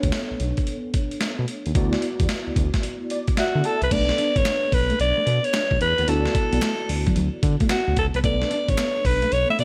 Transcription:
Already playing: B3 D4 A4 C#5
0.03 D2, kick, closed hi-hat
0.12 snare, closed hi-hat
0.31 B1
0.40 B1, closed hi-hat
0.57 kick, closed hi-hat
0.67 closed hi-hat
0.94 kick, closed hi-hat
1.11 closed hi-hat
1.21 snare, closed hi-hat
1.39 B2
1.48 closed hi-hat
1.66 D#2, closed hi-hat
1.75 D2 B3 E4 F#4 D5, kick, closed hi-hat
1.93 snare
2.02 closed hi-hat
2.20 E2, kick, closed hi-hat
2.29 snare, closed hi-hat
2.47 D2
2.56 D2, kick, closed hi-hat
2.74 kick, snare, closed hi-hat
2.83 closed hi-hat
3.10 D5, closed hi-hat
3.27 kick, closed hi-hat
3.37 F#4 E5, snare, closed hi-hat
3.55 D3
3.64 A4 A5, closed hi-hat
3.82 C2 B4, closed hi-hat
3.91 B1 A3 B3 D4 A4 B4 D5, kick, closed hi-hat, crash
4.09 snare
4.18 D4, closed hi-hat
4.36 A1 C#5, muted clean electric guitar stroke, kick, closed hi-hat
4.45 B3, snare, clap, closed hi-hat
4.72 B1 B4, muted clean electric guitar stroke, kick, open hi-hat
4.90 A3, closed hi-hat
4.99 B1 D5, muted clean electric guitar stroke, closed hi-hat
5.17 A3
5.26 B2 B3, closed hi-hat
5.44 C#5, closed hi-hat
5.53 D4, snare, clap, closed hi-hat
5.71 B1, kick
5.81 E2 B4, muted clean electric guitar stroke, closed hi-hat
5.98 D#2 B3, closed hi-hat
6.07 D2 B3 D4 E4 F#4 A4 D5, closed hi-hat
6.26 snare
6.35 muted clean electric guitar stroke, kick, closed hi-hat
6.52 B1 B3, closed hi-hat
6.62 A3, snare, clap, closed hi-hat
6.89 D2, muted clean electric guitar stroke, open hi-hat
7.06 F#3, kick, closed hi-hat
7.16 D2 F#3, closed hi-hat
7.43 D3, muted clean electric guitar stroke, kick, closed hi-hat
7.60 A3, kick, closed hi-hat
7.69 B3 F#4, snare, clap, closed hi-hat
7.88 D2
7.96 C#2 A4, muted clean electric guitar stroke, kick, closed hi-hat
8.14 C2 B3 B4, closed hi-hat
8.23 B1 A3 B3 D4 A4 B4 D5, kick, closed hi-hat
8.42 snare
8.51 D4, closed hi-hat
8.69 A1 C#5, muted clean electric guitar stroke, kick, closed hi-hat
8.78 B3, snare, clap, closed hi-hat
9.05 B1 B4, muted clean electric guitar stroke, kick, open hi-hat
9.22 A3, closed hi-hat
9.32 B1 C#5, muted clean electric guitar stroke, closed hi-hat
9.49 A3 E5
9.59 B2 B3 D5, closed hi-hat

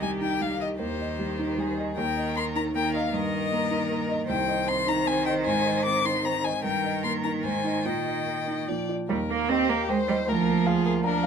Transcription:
Already playing: C2 D#3 G4 D#5
0.02 G3 G#5
0.21 D#4 G5
0.41 G3 F5
0.60 D#5
0.79 D#2 D#3 G4 C5
0.99 D#5
1.19 G3
1.39 D#4
1.58 G3 G#4
1.78 D#5
1.97 D#2 D#3 A#4 G5
2.17 D#5
2.36 A#3 C6
2.56 D#4 A#5
2.75 D#3 A#3 A#4 G5
2.94 D#5 F5
3.13 G2 D#3 A#4 D#5
3.33 D#5
3.52 A#3
3.71 D#4
3.90 A#3
4.09 D#5
4.29 C2 D#3 C5 G5
4.48 D#5
4.67 C4 C6
4.87 D#4 A#5
5.07 C4 G#5
5.26 D#5 G5
5.45 G#2 G#5
5.66 D#5
5.85 C4 D6
6.05 D#4 C6
6.24 C4 A#5
6.44 D#5 G#5
6.64 G2 D#3 A#4 G5
6.84 D#5
7.04 A#3 C6
7.24 D#4 A#5
7.44 G#2 C5 G#5
7.64 D#4 D#5
7.85 A#2 D#5 G5
8.06 D#5
8.27 A#3
8.48 D#4
8.68 A#2 F3 D5
8.89 F4 D5
9.09 D#2 G3 A#4
9.29 A#3
9.49 C4 G4 D#5
9.69 A#3 A#4
9.89 G#3 C5 G5
10.08 G3 D#5
10.28 D2 F3 A#4
10.47 A#3
10.66 F4 G#4 F5
10.85 G#4 A#4
11.04 D4 A#4 A#5
11.23 F5

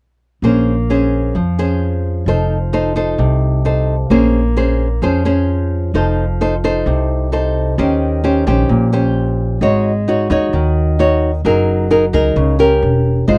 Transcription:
0.42 A#1 A#3 C#4 G#4 C5
0.90 C#4 G#4 C5
1.35 F2 F3
1.59 C#4 G#4 C5
2.26 F1 F3 D#4 A4 C5
2.73 D#4 A4 C5
2.96 D#4 A4 C5
3.18 C2 C3
3.65 D#4 A4 C5
4.10 A#1 A#3 C#4 G#4 C5
4.57 C#4 G#4 C5
5.02 F2 F3 C#4 G#4 C5
5.25 C#4 G#4 C5
5.94 F1 F3 D#4 A4 C5
6.41 D#4 A4 C5
6.64 D#4 A4 C5
6.86 C2 C3
7.32 D#4 A4 C5
7.78 D#2 D#3 C#4 G4 C5
8.24 C#4 G4 C5
8.47 A#1 C#4 G4 C5
8.69 A#1 A#2
8.93 C#4 G4 C5
9.61 G#1 G#3 D#4 F#4 C#5
10.08 D#4 F#4 C#5
10.30 D#2 D#4 F#4 C#5
10.53 D#2 D#3
10.99 D#4 F#4 C#5
11.45 F#1 F#3 D#4 G#4 A#4
11.90 D#4 G#4 A#4
12.13 C#2 D#4 G#4 A#4
12.36 C#2 C#3
12.59 C#4 G4 A#4
12.82 E1
13.28 G#1 G#3 D#4 F4 C5

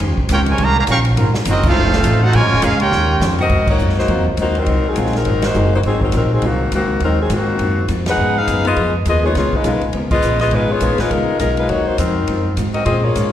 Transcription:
0.00 D#2 D#3 C#4 G4, kick
0.04 C5
0.11 C#2
0.18 A#1, kick
0.29 C#2 D#3 F3 A#3 C4 C#4 G4 A#4 C5 C#5 G5, kick, hi-hat pedal, ride
0.33 F4
0.46 G#3, ride
0.50 F4 A#4 C#5 G#5
0.58 C2 C#3 D#3 G3 A#3 C#4 G4 C5, kick, ride
0.63 G4 C#5 F5 A#5
0.77 C#3 G3 A#3 G4 C#5 F5 A#5
0.87 A#1 D#3 G3 A#3 C#4 G4 C5, kick, hi-hat pedal, ride
0.91 A#4 F5 G5 C#6
1.05 ride
1.16 G#1 G#2 F#3 C4 F4 A#4, kick, ride
1.34 muted upright bass stroke, snare
1.45 F#1 G#2 F#3 C4 D#4 F4, kick, hi-hat pedal, ride
1.50 C4 F#4 A#4 D#5
1.63 C#3 F3 A3 C4 D#4 F4, kick, crash
1.68 D#4 A4 C5 F5
1.75 F1 F3 C#4 D#4 A4
1.92 snare
2.04 A1 F3 C#4 D#4 A4, kick, hi-hat pedal, ride
2.23 D#4 F#4 A4 C5 F#5
2.33 A#1 A#2 C#3 F3 G#3 C#4 F4 A#4 C#5 G#5, kick, ride
2.38 F4
2.43 G#1
2.53 F1
2.62 C#2 A#2 G#3 C#4 F4 G#4 A#4 F5, kick, hi-hat pedal, ride
2.80 A#3 C#4 F4 G4 A#4 C#5 G5, ride
2.92 D#2 D#3 C#4 G4 C5, snare
3.20 F2 D#3 G3 C#4 F4 G4 C5, snare, hi-hat pedal
3.39 C4 F#4 A#4 D#5, floor tom
3.49 G#2 F#3 C4, kick, crash
3.54 F4
3.67 A#3 D#4 F#4 C#5, kick, crash
3.79 F#2 G#2 F#3 C4 F4, hi-hat pedal
3.89 snare
3.99 A#3 D#4 F#4 C5, snare
4.08 F2 G#2 F#3 A#3 C4 D#4 F4, kick, ride
4.18 D#2
4.28 C2
4.37 D#2 G#2 F#3 A#3 C4 D#4 F4 F#4 C5, kick, hi-hat pedal, ride
4.55 F#3 C4 D#4 A#4, ride
4.66 C2 G#2 F#3 C4, kick, ride
4.71 F4
4.87 F#3 C4 D#4 G#4
4.96 A#1 G#2 F#3 A#3 C4 D#4 F4, kick, hi-hat pedal, ride
5.06 snare
5.13 snare, ride
5.17 F#3 C4 D#4 A#4
5.25 G#1 G#2 F#3 C4, kick, ride
5.29 F4
5.42 F#4, snare, ride
5.46 A#3 D#4 C5
5.54 F#1 G#2 F#3 A#3 C4 D#4 F4 G#4, hi-hat pedal
5.75 A#3 D#4 F#4 C5
5.83 G#1 G#2 F#3 C4 D#4 F4 G#4, kick, ride
6.01 F#3 C4 D#4 A#4, kick
6.12 A#1 G#2 F#3 C4 D#4 F4 A#4, kick, hi-hat pedal, ride
6.16 C4
6.33 F#3 C4 D#4 G#4
6.42 C2 G#2 D#3 F#3 A#3 C4 D#4 F4 F#4, kick, ride
6.46 F4
6.72 C#2 G#2 D#3 F#3 A#3 C4 F4 F#4, kick, hi-hat pedal, ride
7.00 D#2 G#2 F#3 C4 F4, kick, ride
7.04 F#3 C4 D#4 A#4
7.21 F#3 C4 D#4 G#4
7.29 G#2 D#3 F#3 A#3 C4 F4 F#4, kick, hi-hat pedal, ride
7.59 F#2 G#2 F#3 C4 F4, kick, ride
7.88 F2 G#2 F#3 C4 F4, kick, hi-hat pedal, ride
8.06 D#4 G#4 B4 F#5, snare, ride
8.17 G#2 C#3 B3 F4
8.21 A#4
8.38 D#4 G#4 B4 F5
8.47 F#2 C#3 B3 F4 A#4, kick, hi-hat pedal, ride
8.64 G#3 A#3 B3 D#4 F4 G#4 D#5, ride
8.76 F2 C#3 B3 F4, kick, ride
8.81 A#4
9.05 D#2 C#3 B3 F4 G#4 A#4 D#5, kick, hi-hat pedal, ride
9.23 G#3 A#3 B3 D#4 F4 G#4 C#5
9.35 C#2 C#3 B3 F4 G#4 C#5, kick, snare, ride
9.39 A#4
9.52 G#3 D#4 F4 B4, muted upright bass stroke, kick
9.64 B1 C#3 G#3 A#3 B3 D#4 F4 A#4, kick, hi-hat pedal, ride
9.81 muted upright bass stroke, ride
9.93 C#2 C#3 B3 F4, kick, ride
9.97 A#4
10.11 B3 F4 G#4 D#5, kick, crash
10.22 A#1 C#3 B3 F4 A#4, hi-hat pedal
10.39 B3 F4 G#4 D#5, snare, ride
10.51 G#1 C#3 G#3 B3 D#4 F4 B4, kick, ride
10.55 A#4
10.71 B3 F4 G#4 C#5
10.80 A#1 C#3 G#3 A#3 B3 D#4 F4 A#4, kick, hi-hat pedal, ride
10.91 G#1
10.98 F1 G#3 D#4 F4 B4, snare, ride
11.10 C#2 C#3 G#3 B3 D#4 F4 A#4, kick, ride
11.28 muted upright bass stroke
11.39 B1 C#3 G#3 B3 D#4 F4 A#4, kick, hi-hat pedal, ride
11.57 G#3 D#4 F4 B4, ride
11.69 D#2 G#2 F#3 A#3 C4 D#4 F4 F#4 C#5, kick, ride
11.87 A#3 D#4 F#4 C5, muted upright bass stroke
11.98 F2 G#2 F#3 C4 D#4 F4 A#4, kick, hi-hat pedal, ride
12.27 F#2 G#2 F#3 C4 F4, kick, ride
12.57 G#2 F#3 C4 F4, kick, hi-hat pedal, ride
12.73 C4 F#4 A#4 D#5, ride
12.86 A#2 G#3 C4 C#4 F4 G#4 D#5, kick, ride
12.90 F4
13.03 A#3 F4 G#4 C#5
13.15 G#2 A#2 G#3 C#4 F4, kick, hi-hat pedal, ride

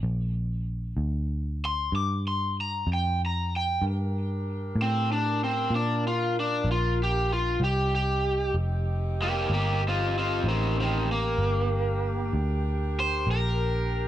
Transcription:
0.03 A#1
0.97 D2
1.65 C6
1.92 G2 D6
2.28 C6
2.61 A#5
2.87 F2
2.93 G5
3.26 A#5
3.56 G5
3.82 G2 D4 G4 A#4
4.76 A2
4.82 C4
5.12 D4
5.44 C4
5.70 A#2 F4
5.75 D4
6.08 F4
6.40 D4
6.65 A#1
6.71 F4
7.04 G4
7.33 F4
7.60 C2 C4 D#4 G4
7.95 G4
8.54 F1
9.22 A#3 G4
9.50 G1 A#3
9.54 G4
9.88 C4 F4
10.18 C4 F4
10.44 A1
10.48 D#3 C4
10.80 D#3 C4
11.12 A#3
11.38 G1 D4 A#4
12.33 D2
13.00 C5
13.27 A#1
13.31 A#4

